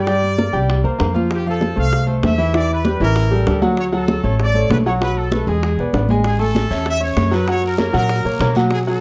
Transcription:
Already playing: upright bass G2, trumpet section D5
0.07 grand piano G3 G4 G5, high bongo, high conga
0.23 high conga
0.38 grand piano A#3 A#4 D5, high bongo, high conga
0.53 upright bass C2, grand piano G3 G4 G5, high bongo, high conga
0.70 high bongo, high conga
0.84 upright bass D2, grand piano A#3 A#4 C5, high bongo, high conga
0.98 upright bass F2, grand piano A#3 A#4 C5, high bongo, low bongo, high conga
1.14 grand piano F3 F4 F5, high bongo, high conga
1.31 trumpet section G4, high bongo, high conga
1.46 grand piano F3 F4 F5, trumpet section A4, high conga
1.61 high bongo, high conga
1.76 upright bass C2, grand piano A3 A4 C5, trumpet section F5, high conga
1.93 high bongo, high conga
2.07 grand piano A3 A4 C5, high conga
2.23 upright bass E2, trumpet section E5, high bongo, low bongo, high conga
2.38 grand piano E3 E4 E5
2.53 grand piano E3 E4 E5, trumpet section D5, high bongo, high conga
2.70 trumpet section B4, high conga
2.85 grand piano G3 G4 B4, high bongo, high conga
3.00 upright bass A1, grand piano E3 E4 E5, trumpet section A#4, high bongo, high conga
3.16 high bongo, high conga
3.31 grand piano G3 G4 A4, high bongo, high conga
3.47 upright bass D2, grand piano G3 G4 A4, high bongo, low bongo, high conga
3.62 grand piano F#3 F#4 F#5, high bongo, high conga
3.77 trumpet section C#5, high bongo, high conga
3.92 grand piano F#3 F#4 F#5, trumpet section A4, high conga
4.08 high bongo, high conga
4.23 upright bass A1, grand piano A3 A4 C#5, high conga
4.40 trumpet section D5, high bongo, high conga
4.54 grand piano A3 A4 C#5, high conga
4.70 upright bass B1, trumpet section B4, high bongo, low bongo, high conga
4.86 grand piano F#3 F#4 F#5, trumpet section C#5, high conga
5.01 grand piano F#3 F#4 F#5, trumpet section B4, high bongo, high conga
5.17 trumpet section A4, high conga
5.32 grand piano A3 A4 B4, high bongo, high conga
5.47 upright bass E2, grand piano G#3 G#4 G#5, trumpet section G#4, high bongo, high conga
5.63 high bongo, high conga
5.78 upright bass B1, grand piano B3 B4 D5, high bongo, high conga
5.93 upright bass A1, grand piano B3 B4 D5, high bongo, low bongo, high conga
6.09 grand piano G#3 G#4 G#5, high bongo, high conga
6.24 trumpet section G#4, high bongo, long guiro
6.39 grand piano A3 A4 G#5, trumpet section A4, high conga
6.55 high bongo, high conga, short guiro
6.70 upright bass E2, grand piano C#4 C#5 E5, high conga, short guiro
6.86 trumpet section E5, high bongo, high conga, long guiro
7.00 grand piano C#4 C#5 E5, trumpet section C#5, high conga
7.17 upright bass F#2, high bongo, low bongo, high conga, short guiro
7.31 grand piano F#3 F#4 F#5, trumpet section B4, high conga, short guiro
7.47 grand piano F#3 F#4 F#5, trumpet section C#5, high bongo, high conga, long guiro
7.64 trumpet section A#4, high conga
7.78 grand piano A#3 A#4 C#5, high bongo, high conga, short guiro
7.93 upright bass A#2, grand piano F#3 F#4 F#5, trumpet section A#4, high bongo, high conga, short guiro
8.09 high bongo, high conga, long guiro
8.25 upright bass A#2, grand piano A#3 A#4 C#5, high bongo, high conga
8.40 upright bass B2, grand piano A#3 A#4 C#5, high bongo, low bongo, high conga, short guiro
8.55 grand piano F#3 F#4 F#5, high bongo, high conga, short guiro
8.70 trumpet section G#4, high bongo, high conga, long guiro
8.87 grand piano F#3 F#4 F#5, trumpet section A4, high conga

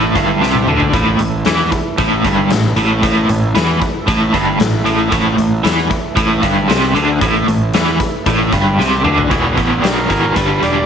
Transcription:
Already playing: fingered electric bass A1, overdriven electric guitar A2, tonewheel organ E3 A3 E4 A4
0.15 fingered electric bass G1, overdriven electric guitar G2, kick, closed hi-hat
0.41 fingered electric bass C2, overdriven electric guitar C3, snare
0.55 high tom
0.67 fingered electric bass D2, overdriven electric guitar D3, mid tom
0.80 floor tom
0.92 fingered electric bass A1, overdriven electric guitar A2, tonewheel organ F3 A#3 F4, kick, closed hi-hat
1.10 tonewheel organ E3 A3 E4
1.19 fingered electric bass A1, overdriven electric guitar A2, closed hi-hat
1.45 fingered electric bass E2, overdriven electric guitar E3, snare, closed hi-hat
1.72 muted overdriven electric guitar stroke, muted fingered electric bass stroke, kick, closed hi-hat
1.98 fingered electric bass A1, overdriven electric guitar A2, kick, closed hi-hat
2.25 fingered electric bass G1, overdriven electric guitar G2, kick, closed hi-hat
2.50 fingered electric bass A1, overdriven electric guitar A2, snare, closed hi-hat
2.76 fingered electric bass A1, overdriven electric guitar A2, closed hi-hat
3.02 fingered electric bass A1, overdriven electric guitar A2, kick, closed hi-hat
3.29 fingered electric bass A1, overdriven electric guitar A2, closed hi-hat
3.55 fingered electric bass E2, overdriven electric guitar E3, snare, closed hi-hat
3.81 muted overdriven electric guitar stroke, muted fingered electric bass stroke, kick, closed hi-hat
4.07 fingered electric bass A1, overdriven electric guitar A2, kick, closed hi-hat
4.33 fingered electric bass G1, overdriven electric guitar G2, kick, closed hi-hat
4.59 fingered electric bass A1, overdriven electric guitar A2, snare, closed hi-hat
4.85 fingered electric bass A1, overdriven electric guitar A2, closed hi-hat
5.11 fingered electric bass A1, overdriven electric guitar A2, tonewheel organ F3 A#3, kick, closed hi-hat
5.29 tonewheel organ E3 A3
5.37 fingered electric bass A1, overdriven electric guitar A2, closed hi-hat
5.64 fingered electric bass E2, overdriven electric guitar E3, snare, closed hi-hat
5.90 muted overdriven electric guitar stroke, muted fingered electric bass stroke, kick, closed hi-hat
6.16 fingered electric bass A1, overdriven electric guitar A2, kick, closed hi-hat
6.42 fingered electric bass G1, overdriven electric guitar G2, kick, closed hi-hat
6.68 fingered electric bass C2, overdriven electric guitar C3, snare, closed hi-hat
6.94 fingered electric bass D2, overdriven electric guitar D3, closed hi-hat
7.21 fingered electric bass A1, overdriven electric guitar A2, kick, closed hi-hat
7.47 fingered electric bass A1, overdriven electric guitar A2, closed hi-hat
7.73 fingered electric bass E2, overdriven electric guitar E3, snare, closed hi-hat
8.00 muted fingered electric bass stroke, muted overdriven electric guitar stroke, kick, closed hi-hat
8.26 fingered electric bass A1, overdriven electric guitar A2, kick, closed hi-hat
8.52 fingered electric bass G1, overdriven electric guitar G2, kick, closed hi-hat
8.78 fingered electric bass C2, overdriven electric guitar C3, snare
9.04 fingered electric bass D2, overdriven electric guitar D3, mid tom
9.18 floor tom
9.30 fingered electric bass E1, overdriven electric guitar E2 B2 E3, kick, closed hi-hat
9.57 fingered electric bass A1, overdriven electric guitar E2 B2 E3, kick, closed hi-hat
9.83 fingered electric bass B1, overdriven electric guitar E2 B2 E3, harmonica D4 G4 A#4, snare, closed hi-hat
10.09 fingered electric bass G#1, overdriven electric guitar E2 B2 E3, kick, closed hi-hat
10.36 fingered electric bass G1, overdriven electric guitar G2 D3 G3, harmonica B4, kick, closed hi-hat
10.62 fingered electric bass E1, overdriven electric guitar G2 D3 G3, harmonica G4 B4 D5, closed hi-hat

